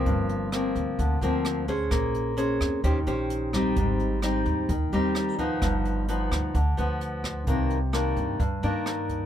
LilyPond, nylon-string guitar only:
\new Staff \with { instrumentName = "Nylon-string guitar" } { \time 4/4 \key g \minor \tempo 4 = 130 << { <f bes c'>4 <f bes c'>4. <f bes c'>4 <cis' aes' c''>8~ | <cis' aes' c''>4 <des' aes' c''>4 <cis' g' c''>8 <cis' g' c''>4 <g c' ees'>8~ | <g c' ees'>4 <g c' ees'>4 r8 <g c' ees'>4 <f b ees'>8~ | <f b ees'>4 <f b ees'>4 r8 <f b>4. |
<ees bes d'>8 r8 <ees bes d'>4 r8 <ees bes d'>4. | } \\ { g,2 d2 | bes2 ees2 | aes,2 ees2 | g,2 d2 |
c2 g,2 | } >> }